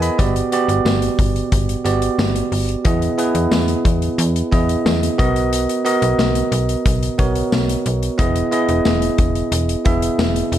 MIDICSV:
0, 0, Header, 1, 4, 480
1, 0, Start_track
1, 0, Tempo, 666667
1, 137, Time_signature, 4, 2, 24, 8
1, 7621, End_track
2, 0, Start_track
2, 0, Title_t, "Tine electric piano"
2, 0, Program_c, 0, 4
2, 0, Control_c, 0, 64, 127
2, 0, Note_on_c, 0, 59, 75
2, 0, Note_on_c, 0, 64, 69
2, 0, Note_on_c, 0, 68, 67
2, 0, Note_on_c, 0, 70, 59
2, 0, Note_on_c, 0, 71, 60
2, 0, Note_on_c, 0, 75, 81
2, 0, Note_on_c, 0, 78, 68
2, 0, Note_on_c, 0, 80, 72
2, 15, Note_on_c, 0, 83, 70
2, 19, Note_off_c, 0, 75, 0
2, 19, Note_on_c, 0, 75, 56
2, 132, Note_off_c, 0, 59, 0
2, 132, Note_on_c, 0, 59, 81
2, 134, Note_on_c, 0, 66, 75
2, 139, Note_on_c, 0, 67, 75
2, 141, Note_on_c, 0, 74, 89
2, 145, Control_c, 0, 64, 0
2, 147, Note_off_c, 0, 71, 0
2, 149, Note_off_c, 0, 78, 0
2, 150, Note_off_c, 0, 64, 0
2, 151, Note_off_c, 0, 68, 0
2, 152, Note_off_c, 0, 70, 0
2, 152, Note_off_c, 0, 80, 0
2, 244, Note_off_c, 0, 83, 0
2, 246, Note_off_c, 0, 75, 0
2, 290, Control_c, 0, 64, 127
2, 295, Note_off_c, 0, 59, 0
2, 296, Note_off_c, 0, 66, 0
2, 299, Note_off_c, 0, 67, 0
2, 300, Note_off_c, 0, 74, 0
2, 373, Note_on_c, 0, 59, 76
2, 378, Note_on_c, 0, 66, 74
2, 382, Note_on_c, 0, 67, 73
2, 384, Note_on_c, 0, 74, 87
2, 1019, Note_off_c, 0, 59, 0
2, 1021, Note_off_c, 0, 66, 0
2, 1023, Note_off_c, 0, 67, 0
2, 1024, Note_off_c, 0, 74, 0
2, 1328, Note_on_c, 0, 59, 74
2, 1330, Note_on_c, 0, 66, 68
2, 1333, Note_on_c, 0, 67, 67
2, 1337, Note_on_c, 0, 74, 78
2, 1815, Note_off_c, 0, 59, 0
2, 1816, Note_off_c, 0, 66, 0
2, 1818, Note_off_c, 0, 67, 0
2, 1820, Note_off_c, 0, 74, 0
2, 2049, Note_on_c, 0, 59, 82
2, 2051, Note_on_c, 0, 64, 70
2, 2053, Note_on_c, 0, 68, 74
2, 2058, Note_on_c, 0, 75, 83
2, 2067, Control_c, 0, 64, 0
2, 2214, Note_off_c, 0, 59, 0
2, 2214, Control_c, 0, 64, 127
2, 2215, Note_off_c, 0, 64, 0
2, 2216, Note_off_c, 0, 68, 0
2, 2218, Note_off_c, 0, 75, 0
2, 2289, Note_on_c, 0, 59, 80
2, 2290, Note_on_c, 0, 64, 74
2, 2293, Note_on_c, 0, 68, 73
2, 2299, Note_on_c, 0, 71, 89
2, 2937, Note_off_c, 0, 59, 0
2, 2937, Note_off_c, 0, 64, 0
2, 2938, Note_off_c, 0, 68, 0
2, 2942, Note_off_c, 0, 71, 0
2, 3249, Note_on_c, 0, 59, 75
2, 3252, Note_on_c, 0, 64, 69
2, 3255, Note_on_c, 0, 68, 66
2, 3258, Note_on_c, 0, 75, 82
2, 3724, Note_off_c, 0, 59, 0
2, 3730, Note_off_c, 0, 75, 0
2, 3732, Note_on_c, 0, 66, 79
2, 3733, Note_on_c, 0, 59, 88
2, 3734, Note_off_c, 0, 64, 0
2, 3736, Note_off_c, 0, 68, 0
2, 3739, Note_on_c, 0, 70, 75
2, 3739, Note_on_c, 0, 75, 93
2, 3746, Control_c, 0, 64, 0
2, 3888, Control_c, 0, 64, 127
2, 4118, Note_off_c, 0, 66, 0
2, 4119, Note_off_c, 0, 59, 0
2, 4122, Note_off_c, 0, 70, 0
2, 4122, Note_off_c, 0, 75, 0
2, 4210, Note_on_c, 0, 59, 79
2, 4214, Note_on_c, 0, 66, 70
2, 4216, Note_on_c, 0, 70, 76
2, 4220, Note_on_c, 0, 75, 93
2, 4857, Note_off_c, 0, 59, 0
2, 4859, Note_off_c, 0, 66, 0
2, 4860, Note_off_c, 0, 70, 0
2, 4862, Note_off_c, 0, 75, 0
2, 5171, Note_on_c, 0, 59, 77
2, 5175, Note_on_c, 0, 66, 70
2, 5177, Note_on_c, 0, 70, 69
2, 5180, Note_on_c, 0, 73, 82
2, 5656, Note_off_c, 0, 59, 0
2, 5659, Note_off_c, 0, 66, 0
2, 5660, Note_off_c, 0, 70, 0
2, 5661, Note_off_c, 0, 73, 0
2, 5888, Note_on_c, 0, 59, 87
2, 5890, Note_on_c, 0, 64, 75
2, 5894, Note_on_c, 0, 68, 73
2, 5897, Note_on_c, 0, 75, 91
2, 5907, Control_c, 0, 64, 0
2, 6029, Control_c, 0, 64, 127
2, 6053, Note_off_c, 0, 59, 0
2, 6054, Note_off_c, 0, 64, 0
2, 6056, Note_off_c, 0, 68, 0
2, 6058, Note_off_c, 0, 75, 0
2, 6131, Note_on_c, 0, 59, 77
2, 6134, Note_on_c, 0, 64, 74
2, 6138, Note_on_c, 0, 68, 74
2, 6141, Note_on_c, 0, 75, 86
2, 6778, Note_off_c, 0, 59, 0
2, 6779, Note_off_c, 0, 64, 0
2, 6781, Note_off_c, 0, 68, 0
2, 6782, Note_off_c, 0, 75, 0
2, 7090, Note_on_c, 0, 59, 77
2, 7093, Note_on_c, 0, 64, 70
2, 7096, Note_on_c, 0, 68, 66
2, 7098, Note_on_c, 0, 76, 86
2, 7576, Note_off_c, 0, 59, 0
2, 7577, Note_off_c, 0, 64, 0
2, 7579, Note_off_c, 0, 68, 0
2, 7580, Note_off_c, 0, 76, 0
2, 7621, End_track
3, 0, Start_track
3, 0, Title_t, "FM bass"
3, 0, Program_c, 1, 39
3, 0, Note_on_c, 1, 40, 101
3, 73, Note_off_c, 1, 40, 0
3, 136, Note_on_c, 1, 31, 118
3, 309, Note_off_c, 1, 31, 0
3, 492, Note_on_c, 1, 31, 100
3, 580, Note_off_c, 1, 31, 0
3, 614, Note_on_c, 1, 31, 104
3, 788, Note_off_c, 1, 31, 0
3, 855, Note_on_c, 1, 31, 96
3, 1029, Note_off_c, 1, 31, 0
3, 1094, Note_on_c, 1, 31, 106
3, 1268, Note_off_c, 1, 31, 0
3, 1333, Note_on_c, 1, 31, 97
3, 1507, Note_off_c, 1, 31, 0
3, 1573, Note_on_c, 1, 31, 101
3, 1747, Note_off_c, 1, 31, 0
3, 1814, Note_on_c, 1, 31, 90
3, 1988, Note_off_c, 1, 31, 0
3, 2053, Note_on_c, 1, 40, 108
3, 2228, Note_off_c, 1, 40, 0
3, 2411, Note_on_c, 1, 40, 97
3, 2499, Note_off_c, 1, 40, 0
3, 2530, Note_on_c, 1, 40, 98
3, 2705, Note_off_c, 1, 40, 0
3, 2771, Note_on_c, 1, 40, 98
3, 2946, Note_off_c, 1, 40, 0
3, 3012, Note_on_c, 1, 40, 120
3, 3186, Note_off_c, 1, 40, 0
3, 3257, Note_on_c, 1, 40, 95
3, 3430, Note_off_c, 1, 40, 0
3, 3497, Note_on_c, 1, 40, 102
3, 3670, Note_off_c, 1, 40, 0
3, 3739, Note_on_c, 1, 35, 98
3, 4084, Note_off_c, 1, 35, 0
3, 4336, Note_on_c, 1, 35, 99
3, 4423, Note_off_c, 1, 35, 0
3, 4454, Note_on_c, 1, 35, 92
3, 4628, Note_off_c, 1, 35, 0
3, 4693, Note_on_c, 1, 35, 99
3, 4867, Note_off_c, 1, 35, 0
3, 4936, Note_on_c, 1, 35, 108
3, 5109, Note_off_c, 1, 35, 0
3, 5175, Note_on_c, 1, 35, 89
3, 5349, Note_off_c, 1, 35, 0
3, 5418, Note_on_c, 1, 35, 104
3, 5590, Note_off_c, 1, 35, 0
3, 5659, Note_on_c, 1, 35, 101
3, 5831, Note_off_c, 1, 35, 0
3, 5896, Note_on_c, 1, 28, 120
3, 6069, Note_off_c, 1, 28, 0
3, 6255, Note_on_c, 1, 28, 97
3, 6342, Note_off_c, 1, 28, 0
3, 6379, Note_on_c, 1, 28, 92
3, 6551, Note_off_c, 1, 28, 0
3, 6613, Note_on_c, 1, 28, 93
3, 6787, Note_off_c, 1, 28, 0
3, 6853, Note_on_c, 1, 28, 111
3, 7027, Note_off_c, 1, 28, 0
3, 7097, Note_on_c, 1, 28, 91
3, 7270, Note_off_c, 1, 28, 0
3, 7334, Note_on_c, 1, 28, 98
3, 7508, Note_off_c, 1, 28, 0
3, 7574, Note_on_c, 1, 28, 102
3, 7621, Note_off_c, 1, 28, 0
3, 7621, End_track
4, 0, Start_track
4, 0, Title_t, "Drums"
4, 17, Note_on_c, 9, 42, 50
4, 89, Note_off_c, 9, 42, 0
4, 137, Note_on_c, 9, 36, 109
4, 138, Note_on_c, 9, 42, 88
4, 209, Note_off_c, 9, 36, 0
4, 210, Note_off_c, 9, 42, 0
4, 259, Note_on_c, 9, 42, 55
4, 331, Note_off_c, 9, 42, 0
4, 377, Note_on_c, 9, 42, 65
4, 449, Note_off_c, 9, 42, 0
4, 498, Note_on_c, 9, 42, 51
4, 570, Note_off_c, 9, 42, 0
4, 618, Note_on_c, 9, 54, 57
4, 619, Note_on_c, 9, 38, 103
4, 690, Note_off_c, 9, 54, 0
4, 691, Note_off_c, 9, 38, 0
4, 735, Note_on_c, 9, 42, 53
4, 807, Note_off_c, 9, 42, 0
4, 855, Note_on_c, 9, 36, 101
4, 858, Note_on_c, 9, 42, 78
4, 927, Note_off_c, 9, 36, 0
4, 930, Note_off_c, 9, 42, 0
4, 978, Note_on_c, 9, 42, 46
4, 1050, Note_off_c, 9, 42, 0
4, 1095, Note_on_c, 9, 42, 103
4, 1096, Note_on_c, 9, 36, 95
4, 1167, Note_off_c, 9, 42, 0
4, 1168, Note_off_c, 9, 36, 0
4, 1218, Note_on_c, 9, 42, 56
4, 1290, Note_off_c, 9, 42, 0
4, 1336, Note_on_c, 9, 42, 73
4, 1408, Note_off_c, 9, 42, 0
4, 1454, Note_on_c, 9, 42, 56
4, 1526, Note_off_c, 9, 42, 0
4, 1577, Note_on_c, 9, 54, 65
4, 1578, Note_on_c, 9, 38, 121
4, 1649, Note_off_c, 9, 54, 0
4, 1650, Note_off_c, 9, 38, 0
4, 1696, Note_on_c, 9, 42, 58
4, 1768, Note_off_c, 9, 42, 0
4, 1816, Note_on_c, 9, 46, 71
4, 1888, Note_off_c, 9, 46, 0
4, 1935, Note_on_c, 9, 42, 51
4, 2007, Note_off_c, 9, 42, 0
4, 2050, Note_on_c, 9, 42, 89
4, 2054, Note_on_c, 9, 36, 111
4, 2122, Note_off_c, 9, 42, 0
4, 2126, Note_off_c, 9, 36, 0
4, 2175, Note_on_c, 9, 42, 53
4, 2247, Note_off_c, 9, 42, 0
4, 2293, Note_on_c, 9, 42, 67
4, 2365, Note_off_c, 9, 42, 0
4, 2411, Note_on_c, 9, 42, 55
4, 2483, Note_off_c, 9, 42, 0
4, 2531, Note_on_c, 9, 54, 59
4, 2532, Note_on_c, 9, 38, 104
4, 2603, Note_off_c, 9, 54, 0
4, 2604, Note_off_c, 9, 38, 0
4, 2650, Note_on_c, 9, 42, 54
4, 2722, Note_off_c, 9, 42, 0
4, 2773, Note_on_c, 9, 36, 97
4, 2773, Note_on_c, 9, 42, 80
4, 2845, Note_off_c, 9, 36, 0
4, 2845, Note_off_c, 9, 42, 0
4, 2895, Note_on_c, 9, 42, 50
4, 2967, Note_off_c, 9, 42, 0
4, 3015, Note_on_c, 9, 42, 96
4, 3087, Note_off_c, 9, 42, 0
4, 3139, Note_on_c, 9, 42, 55
4, 3211, Note_off_c, 9, 42, 0
4, 3257, Note_on_c, 9, 36, 93
4, 3258, Note_on_c, 9, 42, 71
4, 3329, Note_off_c, 9, 36, 0
4, 3330, Note_off_c, 9, 42, 0
4, 3378, Note_on_c, 9, 42, 57
4, 3450, Note_off_c, 9, 42, 0
4, 3499, Note_on_c, 9, 38, 117
4, 3499, Note_on_c, 9, 54, 64
4, 3571, Note_off_c, 9, 38, 0
4, 3571, Note_off_c, 9, 54, 0
4, 3622, Note_on_c, 9, 42, 63
4, 3694, Note_off_c, 9, 42, 0
4, 3738, Note_on_c, 9, 36, 100
4, 3742, Note_on_c, 9, 42, 70
4, 3810, Note_off_c, 9, 36, 0
4, 3814, Note_off_c, 9, 42, 0
4, 3860, Note_on_c, 9, 42, 53
4, 3932, Note_off_c, 9, 42, 0
4, 3980, Note_on_c, 9, 42, 88
4, 4052, Note_off_c, 9, 42, 0
4, 4100, Note_on_c, 9, 42, 56
4, 4172, Note_off_c, 9, 42, 0
4, 4218, Note_on_c, 9, 42, 66
4, 4290, Note_off_c, 9, 42, 0
4, 4335, Note_on_c, 9, 42, 55
4, 4407, Note_off_c, 9, 42, 0
4, 4457, Note_on_c, 9, 54, 53
4, 4458, Note_on_c, 9, 38, 105
4, 4529, Note_off_c, 9, 54, 0
4, 4530, Note_off_c, 9, 38, 0
4, 4574, Note_on_c, 9, 42, 58
4, 4646, Note_off_c, 9, 42, 0
4, 4695, Note_on_c, 9, 42, 77
4, 4767, Note_off_c, 9, 42, 0
4, 4817, Note_on_c, 9, 42, 48
4, 4889, Note_off_c, 9, 42, 0
4, 4936, Note_on_c, 9, 42, 100
4, 4937, Note_on_c, 9, 36, 96
4, 5008, Note_off_c, 9, 42, 0
4, 5009, Note_off_c, 9, 36, 0
4, 5059, Note_on_c, 9, 42, 57
4, 5131, Note_off_c, 9, 42, 0
4, 5175, Note_on_c, 9, 42, 75
4, 5177, Note_on_c, 9, 36, 94
4, 5247, Note_off_c, 9, 42, 0
4, 5249, Note_off_c, 9, 36, 0
4, 5295, Note_on_c, 9, 42, 56
4, 5367, Note_off_c, 9, 42, 0
4, 5417, Note_on_c, 9, 38, 117
4, 5417, Note_on_c, 9, 54, 64
4, 5489, Note_off_c, 9, 38, 0
4, 5489, Note_off_c, 9, 54, 0
4, 5539, Note_on_c, 9, 42, 62
4, 5611, Note_off_c, 9, 42, 0
4, 5658, Note_on_c, 9, 42, 68
4, 5730, Note_off_c, 9, 42, 0
4, 5779, Note_on_c, 9, 42, 53
4, 5851, Note_off_c, 9, 42, 0
4, 5896, Note_on_c, 9, 42, 90
4, 5897, Note_on_c, 9, 36, 106
4, 5968, Note_off_c, 9, 42, 0
4, 5969, Note_off_c, 9, 36, 0
4, 6016, Note_on_c, 9, 42, 56
4, 6088, Note_off_c, 9, 42, 0
4, 6137, Note_on_c, 9, 42, 66
4, 6209, Note_off_c, 9, 42, 0
4, 6254, Note_on_c, 9, 42, 52
4, 6326, Note_off_c, 9, 42, 0
4, 6374, Note_on_c, 9, 54, 56
4, 6375, Note_on_c, 9, 38, 108
4, 6446, Note_off_c, 9, 54, 0
4, 6447, Note_off_c, 9, 38, 0
4, 6494, Note_on_c, 9, 42, 55
4, 6566, Note_off_c, 9, 42, 0
4, 6612, Note_on_c, 9, 42, 78
4, 6614, Note_on_c, 9, 36, 103
4, 6684, Note_off_c, 9, 42, 0
4, 6686, Note_off_c, 9, 36, 0
4, 6735, Note_on_c, 9, 42, 46
4, 6807, Note_off_c, 9, 42, 0
4, 6855, Note_on_c, 9, 42, 102
4, 6927, Note_off_c, 9, 42, 0
4, 6978, Note_on_c, 9, 42, 54
4, 7050, Note_off_c, 9, 42, 0
4, 7095, Note_on_c, 9, 42, 67
4, 7097, Note_on_c, 9, 36, 94
4, 7167, Note_off_c, 9, 42, 0
4, 7169, Note_off_c, 9, 36, 0
4, 7217, Note_on_c, 9, 42, 58
4, 7289, Note_off_c, 9, 42, 0
4, 7337, Note_on_c, 9, 54, 62
4, 7338, Note_on_c, 9, 38, 116
4, 7409, Note_off_c, 9, 54, 0
4, 7410, Note_off_c, 9, 38, 0
4, 7459, Note_on_c, 9, 42, 60
4, 7531, Note_off_c, 9, 42, 0
4, 7579, Note_on_c, 9, 42, 70
4, 7621, Note_off_c, 9, 42, 0
4, 7621, End_track
0, 0, End_of_file